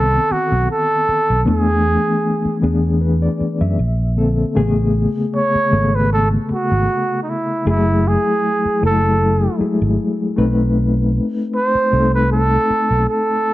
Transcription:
0.00 0.17 C2 medium
0.00 1.48 D#3 medium
0.00 0.88 B3 medium
0.00 0.88 C4 medium
0.00 0.34 A4 loud
0.00 0.89 A4 medium
0.31 0.70 F#4 medium
0.31 muted fingered electric bass stroke soft
0.52 0.66 B1 medium
0.71 1.43 A4 medium
1.09 muted fingered electric bass stroke soft
1.30 1.44 B1 medium
1.45 1.96 E2 loud
1.45 2.47 E3 medium
1.45 2.48 A3 medium
1.45 2.48 B3 medium
1.45 2.48 D4 medium
1.45 2.60 G#4 medium
2.45 muted fingered electric bass stroke soft
2.62 3.27 E2 medium
2.62 3.30 E3 medium
2.62 3.30 B3 medium
2.62 3.30 D4 medium
2.62 3.31 G#4 medium
3.01 3.21 B4 medium
3.22 3.59 D5 medium
3.41 muted fingered electric bass stroke soft
3.61 3.76 F#2 medium
3.61 3.98 E5 medium
3.79 4.43 A#1 medium
4.16 4.51 D3 medium
4.16 4.51 A#3 medium
4.16 4.51 C4 medium
4.16 4.52 A4 medium
4.55 5.06 A1 loud
4.55 5.57 C#3 loud
4.55 5.57 A3 loud
4.55 5.58 B3 medium
4.55 5.58 G#4 loud
5.36 5.97 C#5 loud
5.55 muted fingered electric bass stroke soft
5.71 6.36 G#1 medium
5.71 7.07 C#3 medium
5.71 7.07 A3 medium
5.71 7.08 B3 medium
5.71 7.08 A4 medium
5.95 6.12 B4 medium
6.13 6.29 A4 medium
6.51 7.18 F#4 medium
6.51 muted fingered electric bass stroke soft
6.72 6.86 G#1 medium
7.23 7.32 D#4 medium
7.30 7.67 E4 medium
7.65 8.16 F#1 loud
7.65 8.67 F#3 medium
7.65 8.68 A3 medium
7.65 8.68 E4 medium
7.65 8.09 E4 medium
7.65 8.68 G#4 medium
8.08 8.84 G#4 medium
8.65 muted fingered electric bass stroke soft
8.81 9.47 F#1 medium
8.81 9.50 F#3 medium
8.81 9.50 A3 medium
8.81 9.50 E4 medium
8.81 9.51 A4 medium
8.86 9.58 A4 medium
9.59 10.27 F#3 medium
9.59 9.67 G#3 soft
9.59 10.28 E4 medium
9.59 10.28 G#4 medium
9.59 muted fingered electric bass stroke soft
9.66 10.31 A3 medium
9.82 9.96 G#1 medium
10.36 11.19 B1 medium
10.36 11.72 A3 medium
10.36 11.72 C4 medium
10.36 11.73 D#4 medium
10.36 11.73 B4 medium
11.55 12.10 C5 loud
11.75 muted fingered electric bass stroke soft
11.92 12.56 C2 medium
11.92 13.27 A3 medium
11.92 13.27 C4 medium
11.92 13.28 D#4 medium
11.92 13.28 A4 medium
12.15 12.31 B4 medium
12.32 13.05 A4 medium
12.70 muted fingered electric bass stroke soft
12.91 13.05 B1 medium
13.09 13.54 A4 medium

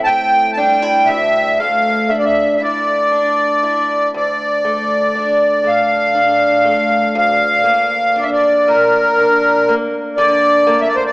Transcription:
0.00 1.08 A2 medium
0.00 1.19 C4 medium
0.00 0.57 E4 medium
0.00 0.09 A5 medium
0.06 1.60 A3 medium
0.06 0.51 G5 loud
0.53 0.58 A5 medium
0.57 0.82 D4 medium
0.57 1.09 G5 medium
0.82 1.17 E4 medium
1.06 4.13 D2 medium
1.06 1.59 E5 loud
1.59 4.64 A3 medium
1.59 2.11 F5 medium
2.09 3.11 D4 medium
2.09 2.16 E5 medium
2.19 2.25 D5 medium
2.25 2.55 E5 medium
2.56 3.62 E4 soft
2.56 2.62 E5 medium
2.62 4.11 D5 medium
3.12 5.15 D4 soft
3.63 4.24 E4 medium
4.14 7.14 D2 medium
4.14 5.71 D5 medium
4.65 5.63 A3 soft
5.15 6.15 D4 medium
5.64 6.64 A3 soft
5.64 7.16 F5 medium
6.15 8.15 D4 medium
6.65 7.25 A3 soft
7.15 10.15 D2 medium
7.15 8.20 F5 medium
7.64 8.67 A#3 medium
8.16 9.18 D4 medium
8.16 8.24 D5 medium
8.23 8.30 E5 medium
8.33 8.69 D5 medium
8.68 9.68 A#3 medium
8.68 9.75 A#4 medium
9.19 11.12 D4 medium
9.69 10.66 A#3 medium
10.17 11.12 D3 medium
10.17 10.81 D5 loud
10.67 11.12 A#3 medium
10.81 10.88 E5 medium
10.88 10.96 D5 medium
10.96 11.04 C5 medium
11.06 11.12 D5 medium

